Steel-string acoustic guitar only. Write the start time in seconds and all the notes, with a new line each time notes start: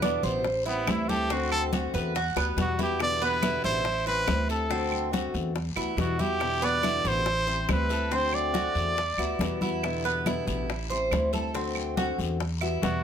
0.03 B2 D3 G3 B3 E4
0.45 muted steel-string acoustic guitar stroke
0.66 G3 C4 E4
0.87 E3 G3 C4 E4
1.09 G3 C4 E4
1.31 D3 A3 C4 F#4
1.73 D3 A3 C4 F#4
2.16 muted steel-string acoustic guitar stroke
2.38 G3 B3 F#4
2.57 B2 E3 G3 B3 F#4
2.79 G3 B3 F#4
3.00 B2 D3 G3 B3 E4
3.43 B2 D3 G3 B3 E4
3.85 muted steel-string acoustic guitar stroke
4.06 G3 C4 E4
4.27 E3 G3 C4 E4
4.48 G3 C4 E4
4.69 D3 A3 C4 F#4
5.12 D3 A3 C4 F#4
5.55 muted steel-string acoustic guitar stroke
5.76 G3 B3 F#4
5.97 B2 E3 G3 B3 F#4
6.19 G3 B3 F#4
6.40 B2 D3 G3 B3 E4
6.83 B2 D3 G3 B3 E4
7.26 muted steel-string acoustic guitar stroke
7.47 G3 C4 E4
7.69 E3 G3 C4 E4
7.90 G3 C4 E4
8.11 D3 A3 C4 F#4
8.54 D3 A3 C4 F#4
8.98 muted steel-string acoustic guitar stroke
9.18 G3 B3 F#4
9.40 B2 E3 G3 B3 F#4
9.63 G3 B3 F#4
9.84 B2 D3 G3 B3 E4
10.26 B2 D3 G3 B3 E4
10.70 muted steel-string acoustic guitar stroke
10.92 G3 C4 E4
11.12 E3 G3 C4 E4
11.34 G3 C4 E4
11.54 D3 A3 C4 F#4
11.98 D3 A3 C4 F#4
12.41 muted steel-string acoustic guitar stroke
12.62 G3 B3 F#4
12.82 B2 E3 G3 B3 F#4